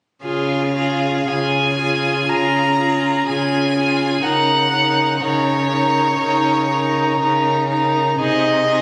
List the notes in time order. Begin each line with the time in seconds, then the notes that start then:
0.23 C#3 F4 G#4 F5
0.75 F4 G#4
1.26 C#3 F4 G#4 G#5
1.78 F4 G#4
2.28 C#3 F4 G#4 A#5
2.79 F4 G#4
3.27 C#3 F4 G#4 G#5
3.75 F4 G#4
4.22 C#3 D#4 A#4 F#5
4.71 D#4 A#4
5.19 C#3 D#4 A#4 C#5
5.69 D#4 A#4
6.19 C#3 D#4 A#4
6.68 D#4 A#4
7.19 C#3 D#4 A#4
7.69 D#4 A#4
8.19 C3 D#4 G#4 D#5
8.66 D#4 G#4